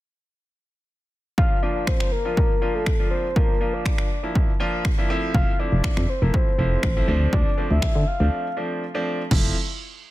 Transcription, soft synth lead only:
1.38 1.64 F5 loud
1.63 1.89 D5 loud
1.87 2.13 C5 loud
2.12 2.76 A#4 loud
2.74 3.10 A4 medium
3.11 3.37 C5 medium
3.35 3.75 A#4 loud
3.73 4.23 D5 medium
5.34 5.61 F5 loud
5.59 6.11 D5 loud
6.09 6.24 C5 medium
6.22 6.36 A#4 medium
6.34 7.33 C5 loud
7.33 7.73 D5 loud
7.71 8.09 E5 medium
8.07 8.57 F5 medium

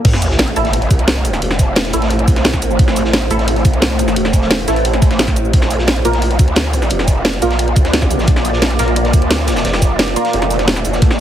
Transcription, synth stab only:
0.56 0.63 A3 loud
0.56 0.63 E4 medium
0.56 0.63 A4 loud
1.93 2.04 A3 medium
1.93 2.04 E4 medium
1.93 2.04 A4 medium
3.31 3.37 A3 loud
3.31 3.37 E4 medium
3.31 3.37 A4 loud
4.68 4.78 A3 medium
4.68 4.78 E4 medium
4.68 4.78 A4 medium
6.05 6.11 A#3 loud
6.05 6.11 F4 medium
6.05 6.11 A#4 loud
7.42 7.52 A#3 medium
7.42 7.52 F4 medium
7.42 7.52 A#4 medium
8.79 8.85 A#3 loud
8.79 8.85 F4 medium
8.79 8.85 A#4 loud
10.16 10.26 A#3 medium
10.16 10.26 F4 medium
10.16 10.26 A#4 medium

